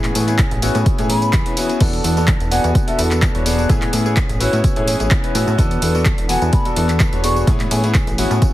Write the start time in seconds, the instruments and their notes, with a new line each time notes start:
Already playing: analog synth bass A2, clean electric guitar E3 B3 C#4 G#4, grand piano B3 C#4 E4 G#4
0.04 clap, closed hi-hat, tambourine
0.15 analog synth bass A2, clean electric guitar E3 B3 C#4 G#4, open hi-hat, tambourine
0.27 grand piano B3 C#4 E4 G#4, closed hi-hat, tambourine
0.39 clean electric guitar B3 G#4, kick, clap, closed hi-hat, tambourine
0.51 analog synth bass A1, closed hi-hat, tambourine
0.62 clean electric guitar E3 B3 C#4 G#4, grand piano B3 C#4 E4 F#4, open hi-hat, tambourine
0.74 analog synth bass A2, clean electric guitar B3 C#4 G#4, closed hi-hat, tambourine
0.86 kick, closed hi-hat, tambourine
0.98 analog synth bass A2, grand piano B3 C#4 E4 G#4, closed hi-hat, tambourine
1.09 clean electric guitar E3 B3 C#4 G#4, flute B5, open hi-hat, tambourine
1.22 clean electric guitar B3 C#4 G#4, closed hi-hat, tambourine
1.33 analog synth bass E2, clean electric guitar E3 C#4, kick, clap, closed hi-hat, tambourine
1.45 grand piano B3 C#4 E4 B4, closed hi-hat, tambourine
1.57 clean electric guitar E3 B3 C#4 G#4, grand piano B3 C#4 E4 F#4, open hi-hat, tambourine
1.69 clean electric guitar B3 C#4 G#4, closed hi-hat, tambourine
1.80 analog synth bass E2, clean electric guitar E3 B3 D4 A4, grand piano B3 D4 F#4 A4, kick, closed hi-hat, crash, tambourine
1.93 closed hi-hat, tambourine
2.04 analog synth bass E2, clean electric guitar E3 B3 D4 A4, open hi-hat, tambourine
2.17 grand piano B3 D4 F#4 A4, tambourine
2.28 clean electric guitar D4, kick, clap, closed hi-hat, tambourine
2.40 analog synth bass E1, closed hi-hat, tambourine
2.51 clean electric guitar E3 B3 D4 A4, grand piano B3 D4 F#4 G#5, flute F#5, open hi-hat, tambourine
2.64 analog synth bass E2, clean electric guitar B3 D4 A4, closed hi-hat, tambourine
2.75 kick, closed hi-hat, tambourine
2.87 analog synth bass E2, grand piano B3 D4 F#4 A4, flute E5, closed hi-hat, tambourine
2.99 analog synth bass E2, clean electric guitar E3 B3 D4 A4, open hi-hat, tambourine
3.11 clean electric guitar B3 D4 A4, clap, closed hi-hat, tambourine
3.22 clean electric guitar E3 B3, kick, clap, closed hi-hat, tambourine
3.34 analog synth bass E1, grand piano B3 D4 F#4 C#5, closed hi-hat, tambourine
3.45 clean electric guitar E3 B3 D4 A4, grand piano B3 D4 F#4 G#4, open hi-hat, tambourine
3.58 clean electric guitar B3 D4 A4, tambourine
3.69 analog synth bass A2, clean electric guitar E3 B3 G#4, grand piano B3 C#4 E4 G#4, kick, closed hi-hat, tambourine
3.82 clap, closed hi-hat, tambourine
3.93 analog synth bass A2, clean electric guitar E3 B3 C#4 G#4, open hi-hat, tambourine
4.05 grand piano B3 C#4 E4 G#4, tambourine
4.17 kick, clap, closed hi-hat, tambourine
4.29 analog synth bass A1, closed hi-hat, tambourine
4.40 clean electric guitar E3 B3 C#4 G#4, grand piano B3 C#4 E4 F#4, flute C#5, open hi-hat, tambourine
4.52 analog synth bass A2, clean electric guitar B3 C#4 G#4, closed hi-hat, tambourine
4.64 kick, closed hi-hat, tambourine
4.76 analog synth bass A2, grand piano B3 C#4 E4 G#4, closed hi-hat, tambourine
4.87 clean electric guitar E3 B3 C#4 G#4, open hi-hat, tambourine
5.00 analog synth bass A1, clean electric guitar B3 C#4 G#4, closed hi-hat, tambourine
5.11 clean electric guitar E3 C#4, kick, clap, closed hi-hat, tambourine
5.23 grand piano B3 C#4 E4 B4, closed hi-hat, tambourine
5.34 analog synth bass A2, clean electric guitar E3 B3 C#4 G#4, grand piano B3 C#4 E4 F#4, open hi-hat, tambourine
5.47 analog synth bass A2, clean electric guitar B3 C#4 G#4, tambourine
5.58 analog synth bass E2, clean electric guitar E3 B3 D4 A4, grand piano B3 D4 F#4 A4, kick, closed hi-hat, tambourine
5.71 closed hi-hat, tambourine
5.82 analog synth bass E2, clean electric guitar E3 B3 D4 A4, open hi-hat, tambourine
5.95 grand piano B3 D4 F#4 A4, tambourine
6.05 clean electric guitar E3 B3, kick, clap, closed hi-hat, tambourine
6.18 analog synth bass E1, closed hi-hat, tambourine
6.29 clean electric guitar E3 B3 D4 A4, grand piano B3 D4 F#4 G#5, flute F#5, open hi-hat, tambourine
6.41 analog synth bass E2, clean electric guitar B3 D4 A4, closed hi-hat, tambourine
6.53 flute B5, kick, closed hi-hat, tambourine
6.65 analog synth bass E2, grand piano B3 D4 F#4 A4, closed hi-hat, tambourine
6.76 analog synth bass E2, clean electric guitar E3 B3 D4 A4, open hi-hat, tambourine
6.89 clean electric guitar B3 D4, clap, closed hi-hat, tambourine
7.00 clean electric guitar D4, kick, clap, closed hi-hat, tambourine
7.12 analog synth bass E1, grand piano B3 D4 F#4 C#5, closed hi-hat, tambourine
7.23 clean electric guitar E3 B3 D4 A4, grand piano B3 D4 F#4 G#4, flute C#6, open hi-hat, tambourine
7.36 clean electric guitar B3 D4 A4, tambourine
7.47 analog synth bass A2, clean electric guitar E3 B3 C#4 G#4, grand piano B3 C#4 E4 G#4, kick, closed hi-hat, tambourine
7.60 clap, closed hi-hat, tambourine
7.71 analog synth bass A2, clean electric guitar E3 B3 C#4 G#4, open hi-hat, tambourine
7.83 grand piano B3 C#4 E4 G#4, closed hi-hat, tambourine
7.94 clean electric guitar E3 B3 C#4 G#4, kick, clap, closed hi-hat, tambourine
8.07 analog synth bass A1, closed hi-hat, tambourine
8.18 clean electric guitar E3 B3 C#4 G#4, grand piano B3 C#4 E4 F#4, open hi-hat, tambourine
8.30 analog synth bass A2, clean electric guitar B3 C#4 G#4, closed hi-hat, tambourine
8.42 analog synth bass C#3, kick, closed hi-hat, tambourine